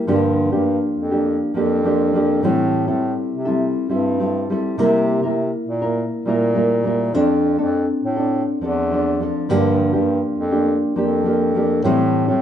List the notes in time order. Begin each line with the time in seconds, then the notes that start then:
0.07 G2 D3 F3 A#3 D4 G4
0.52 G2 F3 A#3 D4 G4
0.97 F2
1.11 F3 A#3 D4 G4
1.54 F2 F3 A#3 D4 G4
1.83 F3 A#3 D4 G4
2.13 F3 A#3 D4 G4
2.43 A2 E3 G3 C4 E4 A4
2.87 A2 G3 C4 E4 A4
3.32 C3
3.45 G3 C4 E4 A4
3.89 G2 G3 C4 E4 A4
4.20 G3 C4 E4 A4
4.50 G3 C4 E4 A4
4.78 C3 G3 A#3 E4 A#4
5.23 C3 A#3 E4 A#4
5.67 A#2
5.82 A#3 E4 A#4
6.25 A#2 G3 A#3 E4 A#4
6.54 G3 A#3 E4 A#4
6.84 G3 A#3 E4 A#4
7.13 F2 F3 C4 D4 A4
7.58 F2 C4 D4 A4
8.03 A2
8.16 C4 D4 A4
8.61 E2 F3 C4 D4 A4
8.91 F3 C4 D4 A4
9.20 F3 C4 D4 A4
9.49 G2 D3 F3 A#3 D4 G4
9.93 G2 F3 A#3 D4 G4
10.38 F2
10.52 F3 A#3 D4 G4
10.96 F2 F3 A#3 D4 G4
11.24 F3 A#3 D4 G4
11.54 F3 A#3 D4 G4
11.84 A2 E3 G3 C4 E4 A4
12.28 A2 G3 C4 E4 A4